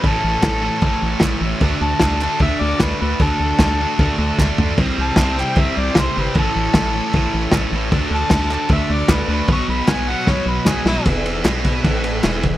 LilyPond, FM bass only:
\new Staff \with { instrumentName = "FM bass" } { \clef bass \time 4/4 \key d \lydian \tempo 4 = 152 a,,8 a,,8 a,,4 a,,8 a,,8 a,,8 a,,8 | d,8 d,8 d,4 d,8 d,8 d,8 d,8 | d,8 d,8 d,4 d,8 d,8 d,8 d,8 | c,8 c,8 c,4 c,8 c,8 c,8 g,,8 |
a,,8 a,,8 a,,4 a,,8 a,,8 a,,8 a,,8 | d,8 d,8 d,4 d,8 d,8 d,8 d,8 | b,,8 b,,8 b,,4 b,,8 b,,8 b,,8 b,,8 | \key e \major e,,4 b,,4 a,,4 e,,8 e,,8 | }